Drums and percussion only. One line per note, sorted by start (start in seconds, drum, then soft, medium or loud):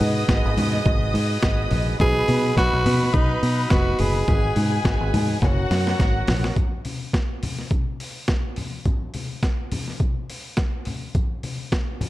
0.00 open hi-hat medium
0.00 muted conga soft
0.00 high conga medium
0.29 kick loud
0.29 snare loud
0.29 closed hi-hat medium
0.29 muted conga soft
0.58 open hi-hat medium
0.58 muted conga soft
0.58 high conga medium
0.58 low conga medium
0.73 snare soft
0.86 kick loud
0.86 closed hi-hat medium
0.86 high conga medium
1.15 open hi-hat medium
1.15 muted conga soft
1.43 kick loud
1.43 snare loud
1.43 closed hi-hat medium
1.71 open hi-hat medium
1.71 muted conga soft
1.71 high conga soft
1.71 low conga medium
2.00 kick loud
2.00 closed hi-hat medium
2.00 muted conga soft
2.00 low conga medium
2.28 open hi-hat medium
2.28 muted conga soft
2.28 high conga medium
2.57 kick loud
2.57 snare loud
2.57 closed hi-hat medium
2.86 open hi-hat medium
2.86 high conga medium
2.86 low conga medium
3.02 snare soft
3.14 kick loud
3.14 closed hi-hat medium
3.14 muted conga soft
3.14 high conga medium
3.43 open hi-hat medium
3.70 kick loud
3.70 snare loud
3.70 closed hi-hat medium
3.99 open hi-hat medium
3.99 muted conga soft
3.99 high conga medium
3.99 low conga medium
4.28 kick loud
4.28 closed hi-hat medium
4.28 muted conga soft
4.28 low conga medium
4.56 open hi-hat medium
4.56 muted conga soft
4.56 high conga medium
4.85 kick loud
4.85 snare loud
4.85 closed hi-hat medium
4.85 muted conga soft
5.14 open hi-hat medium
5.14 muted conga soft
5.14 high conga medium
5.14 low conga medium
5.42 kick loud
5.42 snare medium
5.42 closed hi-hat medium
5.42 high conga medium
5.71 snare medium
5.71 open hi-hat medium
5.71 muted conga soft
5.87 snare medium
6.00 kick loud
6.00 snare medium
6.00 closed hi-hat medium
6.00 muted conga soft
6.27 snare loud
6.27 open hi-hat medium
6.27 muted conga soft
6.27 high conga medium
6.27 low conga medium
6.44 snare medium
6.56 kick medium
6.56 closed hi-hat medium
6.56 muted conga soft
6.56 low conga medium
6.85 open hi-hat medium
6.85 high conga medium
7.13 kick loud
7.13 snare medium
7.13 closed hi-hat soft
7.43 open hi-hat medium
7.43 muted conga soft
7.43 high conga medium
7.43 low conga medium
7.59 snare soft
7.71 kick loud
7.71 closed hi-hat medium
7.71 muted conga soft
7.71 high conga medium
8.00 open hi-hat medium
8.00 muted conga soft
8.28 kick loud
8.28 snare medium
8.28 closed hi-hat medium
8.28 muted conga soft
8.56 open hi-hat medium
8.56 muted conga soft
8.56 high conga soft
8.56 low conga medium
8.85 kick medium
8.85 closed hi-hat medium
8.85 muted conga soft
8.85 low conga medium
9.14 open hi-hat medium
9.14 muted conga soft
9.14 high conga medium
9.43 kick medium
9.43 snare medium
9.43 closed hi-hat medium
9.43 muted conga soft
9.72 open hi-hat medium
9.72 muted conga soft
9.72 high conga medium
9.72 low conga medium
9.88 snare soft
10.00 kick medium
10.00 closed hi-hat soft
10.00 high conga medium
10.30 open hi-hat medium
10.30 muted conga soft
10.57 kick loud
10.57 snare medium
10.57 closed hi-hat medium
10.57 muted conga soft
10.85 open hi-hat medium
10.85 muted conga soft
10.85 high conga soft
10.85 low conga medium
11.15 kick medium
11.15 closed hi-hat medium
11.15 muted conga soft
11.15 low conga medium
11.43 open hi-hat medium
11.43 muted conga soft
11.43 high conga medium
11.72 kick loud
11.72 snare medium
11.72 closed hi-hat soft
11.72 muted conga soft
12.01 open hi-hat medium
12.01 muted conga soft
12.01 high conga medium
12.01 low conga medium